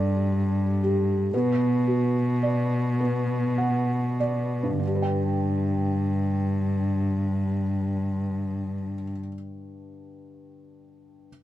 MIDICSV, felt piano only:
0, 0, Header, 1, 2, 480
1, 0, Start_track
1, 0, Key_signature, 1, "major"
1, 0, Tempo, 1013514
1, 633, Time_signature, 6, 3, 24, 8
1, 633, Tempo, 1075269
1, 1113, Tempo, 1153846
1, 1593, Tempo, 1260504
1, 2073, Tempo, 1318681
1, 4478, End_track
2, 0, Start_track
2, 0, Title_t, "Felt piano"
2, 0, Program_c, 0, 0
2, 0, Control_c, 0, 64, 127
2, 0, Note_on_c, 0, 55, 53
2, 0, Note_on_c, 0, 62, 40
2, 0, Note_on_c, 0, 69, 46
2, 0, Note_on_c, 0, 74, 44
2, 372, Note_off_c, 0, 62, 0
2, 394, Note_on_c, 0, 67, 42
2, 615, Note_off_c, 0, 55, 0
2, 615, Note_off_c, 0, 69, 0
2, 618, Note_off_c, 0, 74, 0
2, 628, Note_off_c, 0, 67, 0
2, 634, Note_on_c, 0, 59, 49
2, 637, Control_c, 0, 64, 0
2, 704, Control_c, 0, 64, 127
2, 873, Note_on_c, 0, 66, 35
2, 1120, Note_on_c, 0, 74, 36
2, 1354, Note_off_c, 0, 59, 0
2, 1360, Note_on_c, 0, 59, 39
2, 1599, Note_on_c, 0, 78, 40
2, 1814, Note_off_c, 0, 66, 0
2, 1815, Note_off_c, 0, 78, 0
2, 1829, Note_off_c, 0, 74, 0
2, 1835, Note_on_c, 0, 74, 43
2, 1999, Note_on_c, 0, 43, 33
2, 2028, Note_on_c, 0, 50, 31
2, 2060, Note_on_c, 0, 62, 31
2, 2062, Note_off_c, 0, 74, 0
2, 2063, Note_off_c, 0, 59, 0
2, 2077, Control_c, 0, 64, 0
2, 2088, Note_on_c, 0, 67, 34
2, 2118, Note_on_c, 0, 71, 29
2, 2138, Control_c, 0, 64, 127
2, 2145, Note_on_c, 0, 79, 36
2, 3571, Note_off_c, 0, 43, 0
2, 3599, Note_off_c, 0, 50, 0
2, 3630, Note_off_c, 0, 62, 0
2, 3657, Note_off_c, 0, 67, 0
2, 3687, Note_off_c, 0, 71, 0
2, 3714, Note_off_c, 0, 79, 0
2, 4426, Control_c, 0, 64, 0
2, 4478, End_track
0, 0, End_of_file